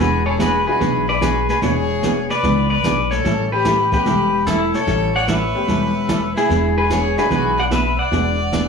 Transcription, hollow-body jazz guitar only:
0.00 0.22 E3 medium
0.00 0.22 B3 medium
0.00 0.23 D4 medium
0.00 0.23 G#4 medium
0.39 0.52 E3 medium
0.39 0.52 B3 medium
0.39 0.52 D4 medium
0.39 0.52 G#4 medium
0.80 1.03 E3 medium
0.80 1.04 B3 medium
0.80 1.04 D4 medium
0.80 1.04 G#4 medium
1.21 1.33 E3 medium
1.21 1.34 B3 medium
1.21 1.34 D4 medium
1.21 1.34 G#4 medium
1.63 1.85 E3 soft
1.63 1.86 B3 medium
1.63 1.85 D4 medium
1.63 1.86 G#4 medium
2.04 2.15 E3 medium
2.04 2.16 B3 medium
2.04 2.16 D4 medium
2.04 2.16 G#4 medium
2.44 2.66 E3 medium
2.44 2.67 B3 medium
2.44 2.67 D4 medium
2.44 2.67 G#4 medium
2.85 2.97 E3 medium
2.85 2.97 B3 medium
2.85 2.97 D4 medium
2.85 2.97 G#4 medium
3.25 3.48 E3 medium
3.25 3.48 G3 medium
3.25 3.48 C#4 medium
3.25 3.48 E4 medium
3.25 3.48 A4 medium
3.65 3.77 E3 medium
3.65 3.78 G3 medium
3.65 3.78 C#4 medium
3.65 3.78 E4 medium
3.65 3.78 A4 medium
4.07 4.29 E3 medium
4.07 4.29 G3 medium
4.07 4.29 C#4 medium
4.07 4.29 E4 medium
4.07 4.30 A4 medium
4.47 4.59 E3 medium
4.47 4.59 G3 medium
4.47 4.59 C#4 medium
4.47 4.59 E4 medium
4.47 4.59 A4 medium
4.87 5.10 E3 medium
4.87 5.10 G3 medium
4.87 5.10 C#4 medium
4.87 5.10 E4 medium
4.87 5.10 A4 medium
5.29 5.40 E3 medium
5.29 5.41 G3 medium
5.29 5.41 C#4 medium
5.29 5.41 E4 medium
5.29 5.41 A4 medium
5.68 5.91 E3 medium
5.68 5.91 G3 medium
5.68 5.91 C#4 medium
5.68 5.92 E4 medium
5.68 5.92 A4 medium
6.08 6.21 E3 medium
6.08 6.21 G3 medium
6.08 6.21 C#4 medium
6.08 6.21 E4 medium
6.08 6.21 A4 medium
6.49 6.72 E3 medium
6.49 6.73 B3 medium
6.49 6.73 D4 medium
6.49 6.73 G#4 medium
6.90 7.03 E3 medium
6.90 7.03 B3 medium
6.90 7.03 D4 medium
6.90 7.03 G#4 medium
7.31 7.54 E3 medium
7.31 7.54 B3 medium
7.31 7.54 D4 medium
7.31 7.54 G#4 medium
7.71 7.83 E3 medium
7.71 7.84 B3 medium
7.71 7.84 D4 medium
7.71 7.84 G#4 medium
8.11 8.35 E3 medium
8.11 8.35 B3 medium
8.11 8.35 D4 medium
8.11 8.36 G#4 medium
8.52 8.65 E3 medium
8.52 8.65 B3 medium
8.52 8.65 D4 medium
8.52 8.66 G#4 medium

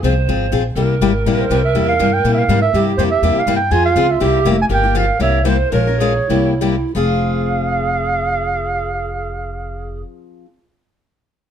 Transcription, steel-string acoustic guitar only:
0.04 0.13 F3 medium
0.04 0.13 C4 medium
0.04 0.13 F4 medium
0.04 0.13 G#4 loud
0.29 0.45 F3 medium
0.29 0.46 C4 medium
0.29 0.46 F4 medium
0.29 0.46 G#4 medium
0.52 0.62 F3 medium
0.52 0.62 C4 medium
0.52 0.62 F4 medium
0.52 0.62 G#4 medium
0.76 0.94 C3 medium
0.76 0.94 G3 medium
0.76 0.94 A#3 medium
0.76 0.94 E4 medium
0.76 0.94 G4 medium
1.01 1.11 C3 medium
1.01 1.11 G3 medium
1.01 1.11 A#3 loud
1.01 1.11 E4 loud
1.01 1.11 G4 medium
1.26 1.43 C3 medium
1.26 1.44 G3 medium
1.26 1.44 A#3 medium
1.26 1.44 E4 medium
1.26 1.44 G4 medium
1.50 1.60 C3 medium
1.50 1.60 G3 medium
1.50 1.60 A#3 loud
1.50 1.60 E4 medium
1.50 1.60 G4 medium
1.75 1.92 C3 medium
1.75 1.92 G3 medium
1.75 1.93 A#3 medium
1.75 1.93 E4 medium
1.75 1.93 G4 medium
1.99 2.09 C3 medium
1.99 2.09 G3 medium
1.99 2.09 A#3 medium
1.99 2.09 E4 medium
1.99 2.09 G4 medium
2.25 2.42 C3 medium
2.25 2.42 G3 medium
2.25 2.42 A#3 medium
2.25 2.42 E4 medium
2.25 2.42 G4 medium
2.49 2.58 C3 medium
2.49 2.59 G3 medium
2.49 2.59 A#3 medium
2.49 2.59 E4 medium
2.49 2.59 G4 medium
2.74 2.91 C3 medium
2.74 2.91 G3 medium
2.74 2.92 A#3 medium
2.74 2.92 E4 medium
2.74 2.92 G4 medium
2.99 3.08 C3 medium
2.99 3.08 G3 medium
2.99 3.08 A#3 medium
2.99 3.08 E4 loud
2.99 3.08 G4 medium
3.23 3.40 C3 medium
3.23 3.40 G3 medium
3.23 3.40 A#3 medium
3.23 3.40 E4 medium
3.23 3.41 G4 medium
3.47 3.57 C3 medium
3.47 3.57 G3 medium
3.47 3.57 A#3 medium
3.47 3.57 E4 medium
3.47 3.57 G4 loud
3.71 3.89 F3 medium
3.71 3.89 C4 medium
3.71 3.89 F4 medium
3.71 3.89 G#4 medium
3.96 4.06 F3 medium
3.96 4.06 C4 medium
3.96 4.06 F4 medium
3.96 4.06 G#4 medium
4.20 4.38 C3 medium
4.20 4.38 G3 medium
4.20 4.38 A#3 medium
4.20 4.38 E4 medium
4.20 4.38 G4 medium
4.45 4.55 C3 medium
4.45 4.55 G3 medium
4.45 4.55 A#3 medium
4.45 4.55 E4 medium
4.45 4.55 G4 medium
4.69 4.82 C#3 medium
4.69 4.83 F3 medium
4.69 4.83 A#3 medium
4.69 4.83 F4 medium
4.69 4.82 G4 medium
4.83 4.94 A#3 soft
4.83 4.94 F4 soft
4.83 4.94 G4 medium
4.95 5.04 C#3 medium
4.95 5.05 F3 medium
4.95 5.05 A#3 medium
4.95 5.05 F4 loud
4.95 5.05 G4 medium
5.20 5.38 C3 medium
5.20 5.38 G3 medium
5.20 5.38 A#3 medium
5.20 5.38 E4 medium
5.20 5.38 G4 medium
5.45 5.56 C3 medium
5.45 5.56 G3 medium
5.45 5.56 A#3 medium
5.45 5.56 E4 medium
5.45 5.56 G4 medium
5.72 5.86 F3 medium
5.72 5.86 G#3 medium
5.72 5.86 C#4 medium
5.72 5.87 F4 medium
5.72 5.86 A#4 medium
5.87 6.00 C#4 soft
5.87 6.00 F4 soft
5.87 5.99 A#4 medium
6.00 6.12 F3 medium
6.00 6.12 G#3 medium
6.00 6.12 C#4 medium
6.00 6.12 F4 medium
6.00 6.12 A#4 medium
6.30 6.52 C3 medium
6.30 6.52 G3 medium
6.30 6.52 A#3 medium
6.30 6.52 E4 medium
6.30 6.53 G4 medium
6.61 6.74 C3 medium
6.61 6.74 G3 medium
6.61 6.74 A#3 medium
6.61 6.75 E4 medium
6.61 6.75 G4 medium
6.95 10.45 F3 medium
6.95 10.46 C4 medium
6.95 10.46 F4 medium
6.95 10.47 G#4 medium

